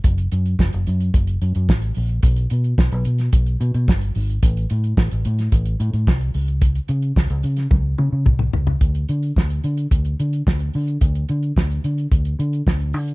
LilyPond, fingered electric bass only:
\new Staff \with { instrumentName = "Fingered electric bass" } { \clef bass \time 4/4 \key d \major \tempo 4 = 109 fis,,8 fis,8 fis,,16 fis,,16 fis,8 fis,,8 fis,16 fis,16 a,,8 bes,,8 | b,,8 b,8 b,,16 b,,16 b,8 b,,8 b,16 b,16 g,,8 gis,,8 | a,,8 a,8 a,,16 a,,16 a,8 a,,8 a,16 a,16 c,8 cis,8~ | cis,8 cis8 cis,16 cis,16 cis8 cis,8 cis16 cis16 c,8 cis,8 |
d,8 d8 d,8 d8 d,8 d8 d,8 d8 | d,8 d8 d,8 d8 d,8 d8 d,8 d8 | }